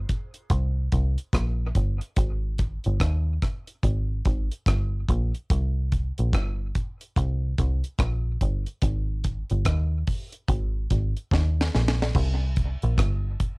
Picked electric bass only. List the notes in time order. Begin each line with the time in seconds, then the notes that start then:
0.51 C2
0.93 C2
1.34 A#1
1.76 G1
2.17 G#1
2.86 G1
3.01 D#2
3.84 G#1
4.26 G#1
4.67 G1
5.09 A#1
5.51 C2
6.19 A#1
6.34 G1
7.17 C2
7.59 C2
7.99 A#1
8.42 G1
8.83 G#1
9.51 G1
9.66 D#2
10.49 G#1
10.91 G#1
11.32 D#2
11.75 A#1
12.15 C2
12.83 A#1
12.98 G1